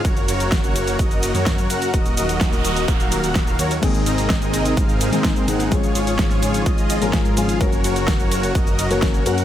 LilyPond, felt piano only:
\new Staff \with { instrumentName = "Felt piano" } { \time 4/4 \key ges \lydian \tempo 4 = 127 r1 | r1 | <aes, ees bes c' aes'>2~ <aes, ees bes c' aes'>8. <aes, ees bes c' aes'>8. <ees bes c' aes'>8 | <aes, f aes des' aes'>2~ <aes, f aes des' aes'>8. <aes, f aes des' aes'>8. <f aes des' aes'>8 |
<ges bes des' bes'>2~ <ges bes des' bes'>8. <ges bes des' bes'>8. <ges bes des' bes'>8 | }